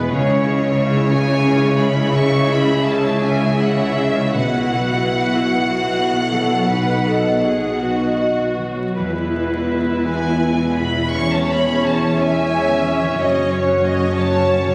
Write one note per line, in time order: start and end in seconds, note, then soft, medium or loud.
0.00 0.12 E1 medium
0.00 0.12 E2 medium
0.00 0.15 E2 medium
0.00 0.15 B2 medium
0.00 0.29 G#3 medium
0.00 0.12 B3 medium
0.00 1.43 E4 medium
0.00 0.62 G#4 medium
0.00 0.12 B4 medium
0.00 0.15 B4 medium
0.00 0.45 E5 medium
0.00 0.15 B5 medium
0.12 4.31 C#2 medium
0.12 4.31 C#3 medium
0.12 4.03 C#3 medium
0.12 1.09 G#3 medium
0.12 0.28 C#4 medium
0.12 1.09 E4 medium
0.12 0.27 G#4 medium
0.12 2.09 C#5 medium
0.29 1.60 G#3 medium
0.29 0.46 E4 medium
0.29 0.46 C#5 medium
0.45 0.62 C#4 medium
0.45 0.62 G#4 medium
0.45 0.78 E5 medium
0.62 0.78 E4 medium
0.62 1.10 G#4 medium
0.62 0.79 C#5 medium
0.79 0.94 C#4 medium
0.79 0.94 G#4 medium
0.79 1.27 E5 medium
0.95 1.11 E4 medium
0.95 1.11 C#5 medium
0.95 3.01 E6 medium
1.11 2.11 G#3 medium
1.11 1.28 C#4 medium
1.11 2.11 E4 medium
1.11 2.65 G#4 medium
1.11 1.28 G#4 medium
1.11 1.74 G#5 loud
1.28 1.44 E4 medium
1.28 1.44 C#5 medium
1.28 2.47 E5 medium
1.44 1.60 C#4 medium
1.44 3.56 E4 soft
1.44 1.60 G#4 medium
1.61 1.94 G#3 medium
1.61 1.78 E4 medium
1.61 1.78 C#5 medium
1.78 1.95 C#4 medium
1.78 2.12 C#4 medium
1.78 1.95 G#4 medium
1.78 2.13 B5 medium
1.95 2.29 G#3 medium
1.95 2.13 E4 medium
1.95 2.13 C#5 medium
2.13 3.19 G#3 medium
2.13 2.29 C#4 medium
2.13 3.95 C#4 medium
2.13 3.19 E4 medium
2.13 2.29 G#4 medium
2.13 3.20 E5 medium
2.13 2.48 C#6 medium
2.30 3.75 G#3 soft
2.30 2.48 E4 medium
2.30 2.48 C#5 medium
2.48 2.66 C#4 medium
2.48 2.66 G#4 medium
2.48 2.83 E5 medium
2.48 2.85 B5 medium
2.66 2.84 E4 soft
2.66 3.19 G#4 medium
2.66 2.84 C#5 soft
2.84 3.01 C#4 medium
2.84 3.01 G#4 medium
2.84 3.37 E5 medium
2.84 3.21 A5 medium
3.02 3.21 E4 soft
3.02 3.21 C#5 medium
3.02 5.34 E6 medium
3.20 4.33 G#3 medium
3.20 3.39 C#4 medium
3.20 4.33 E4 medium
3.20 4.38 G#4 medium
3.20 3.39 G#4 medium
3.20 4.33 E5 medium
3.20 3.58 G#5 medium
3.38 3.58 E4 soft
3.38 3.58 C#5 soft
3.38 4.74 E5 soft
3.57 3.75 C#4 medium
3.57 6.72 E4 soft
3.57 3.75 G#4 soft
3.57 3.96 F#5 medium
3.76 4.14 G#3 soft
3.76 3.96 E4 soft
3.76 3.96 C#5 soft
3.96 4.38 C#4 soft
3.96 4.16 C#4 soft
3.96 4.15 G#4 soft
3.96 4.35 E5 medium
4.15 4.38 G#3 soft
4.15 4.35 E4 soft
4.15 4.35 C#5 soft
4.34 8.76 B1 medium
4.34 8.76 B2 medium
4.34 5.50 B2 medium
4.34 6.67 B2 medium
4.34 6.68 B3 medium
4.34 6.66 E4 medium
4.34 4.54 F#4 medium
4.34 4.54 B4 soft
4.34 8.55 F#5 medium
4.34 8.36 F#5 medium
4.55 6.11 B3 soft
4.55 4.75 E4 soft
4.55 4.73 F#4 soft
4.74 4.93 F#4 soft
4.74 4.95 B4 soft
4.74 5.74 E5 soft
4.95 5.15 E4 soft
4.95 5.14 F#4 soft
4.95 5.54 B4 soft
5.15 5.34 F#4 soft
5.15 5.34 B4 soft
5.15 7.43 F#5 soft
5.35 5.54 E4 soft
5.35 5.54 F#4 soft
5.35 6.72 E6 soft
5.55 6.28 F#4 medium
5.55 7.24 B4 soft
5.75 6.72 E5 soft
5.93 8.19 F#4 soft
6.13 6.49 B3 soft
6.31 8.57 F#3 soft
6.31 6.69 A4 medium
6.50 6.86 B3 soft
6.68 9.00 B2 medium
6.68 8.59 B3 medium
6.68 8.63 D#4 medium
6.68 7.06 B4 medium
6.87 8.38 B3 soft
7.06 7.44 A4 medium
7.06 8.00 D#5 soft
7.25 7.81 B4 soft
7.44 7.83 G#4 medium
7.44 9.00 F#5 soft
7.63 9.00 D#6 soft
7.82 8.97 F#4 medium
7.82 9.52 B4 soft
8.01 9.00 D#5 soft
8.21 9.00 F#4 soft
8.39 8.77 B3 soft
8.58 9.00 F#3 soft
8.78 9.15 B3 soft
8.97 13.14 E1 medium
8.97 13.13 E2 medium
8.97 11.13 E2 medium
8.97 11.11 B3 medium
8.97 11.10 E4 medium
8.97 13.14 E4 medium
8.97 11.10 B4 medium
9.16 10.61 B3 soft
9.35 9.71 E5 soft
9.54 10.08 B4 soft
9.72 10.26 E5 soft
9.90 13.20 E6 soft
10.08 11.17 B4 soft
10.08 10.76 G#5 medium
10.27 13.21 E5 soft
10.45 13.20 E4 soft
10.62 10.96 B3 soft
10.79 11.17 B2 soft
10.79 11.14 B5 medium
10.97 11.17 B3 soft
11.14 13.20 E2 medium
11.14 14.75 C#4 medium
11.14 14.75 C#5 medium
11.14 12.13 C#5 medium
11.14 11.31 C#6 medium
11.31 12.50 C#4 soft
11.31 11.48 A5 medium
11.49 12.17 C#5 soft
11.49 11.84 B5 medium
11.66 12.34 G#4 soft
11.83 13.20 G#5 soft
11.83 12.18 A5 medium
12.01 13.98 C#6 medium
12.17 13.49 C#5 medium
12.17 13.17 E5 medium
12.17 13.18 G#5 medium
12.35 13.20 G#4 soft
12.52 12.84 C#4 medium
12.69 13.00 E3 soft
12.85 13.33 C#4 soft
13.01 13.20 E3 medium
13.17 14.75 F#1 medium
13.17 14.75 F#2 medium
13.17 14.75 F#4 medium
13.17 13.51 D#5 medium
13.35 14.45 C#4 soft
13.51 14.13 C#5 medium
13.51 13.83 C#5 medium
13.67 14.29 F#4 medium
13.83 14.14 D#5 medium
13.83 14.75 F#5 medium
13.99 14.75 C#6 medium
14.15 14.75 C#5 medium
14.15 14.75 A5 medium
14.31 14.75 F#4 soft
14.46 14.75 C#4 soft
14.63 14.75 C#3 soft